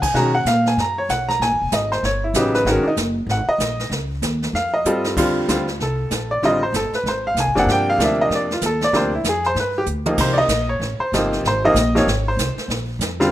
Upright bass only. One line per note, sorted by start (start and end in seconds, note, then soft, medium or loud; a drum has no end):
0.00 0.13 C#3 medium
0.14 0.44 B2 medium
0.45 0.76 A#2 medium
0.77 1.08 F#2 medium
1.09 1.39 B1 medium
1.40 1.51 A#1 medium
1.51 1.61 G#1 medium
1.61 1.71 E1 medium
1.72 2.02 G#1 medium
2.03 2.33 G1 medium
2.34 2.64 A1 medium
2.65 2.83 G#1 medium
2.97 3.26 F#1 loud
3.27 3.45 G#1 medium
3.47 muted upright bass stroke soft
3.58 3.89 A#1 medium
3.90 4.21 C#2 medium
4.22 4.53 D#2 medium
4.53 4.84 F2 medium
4.85 5.15 G2 medium
5.17 5.47 F2 medium
5.48 5.79 D2 medium
5.79 6.10 C2 medium
6.10 6.41 A#1 medium
6.42 6.72 A1 medium
6.72 6.91 G1 medium
6.92 muted upright bass stroke soft
7.04 7.34 G#1 medium
7.35 7.47 C2 medium
7.46 7.55 G#1 medium
7.56 7.66 F#1 medium
7.66 7.97 G2 medium
7.98 8.29 D2 medium
8.29 8.60 F2 medium
8.61 8.92 D#2 medium
8.93 9.23 D2 medium
9.24 9.54 F2 medium
9.55 9.86 G2 medium
9.86 10.17 D2 medium
10.18 10.48 C2 medium
10.48 10.79 A#1 medium
10.80 10.98 A1 medium
10.99 muted upright bass stroke soft
11.12 11.43 G1 medium
11.43 11.74 G#1 medium
11.74 12.05 A#1 loud
12.06 12.36 G#1 medium
12.37 12.55 C2 medium
12.56 muted upright bass stroke soft
12.68 12.98 A#1 medium
12.99 13.30 F2 medium